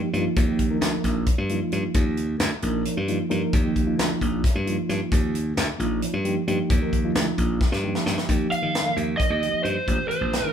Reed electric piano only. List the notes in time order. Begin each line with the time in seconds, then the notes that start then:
0.14 F3 A#3 D#4 F4
0.47 F3 A#3 D#4 G4
0.70 F3 A#3 D#4 A#4
1.49 F3 A#3 D#4 F4
2.62 F3 A#3 D#4 A#4
3.08 F3 A#3 D#4 F4
3.29 F3 A#3 D#4 A#4
3.63 F3 A#3 D#4 G4
3.87 F3 A#3 D#4 F4
4.65 F3 A#3 D#4 F4
5.79 F3 A#3 D#4 F4
6.24 F3 A#3 D#4 G4
6.47 F3 A#3 D#4 G4
6.81 F3 A#3 D#4 A#4
7.04 F3 A#3 D#4 F4
7.83 F3 A#3 D#4 G4
8.28 F3 A#3 D#4 G4
8.85 F3 A#3 D#4 A#4
9.42 F3 A#3 D#4 G4
9.86 E3 A3 D4 G4
10.43 E3 A3 D4 E4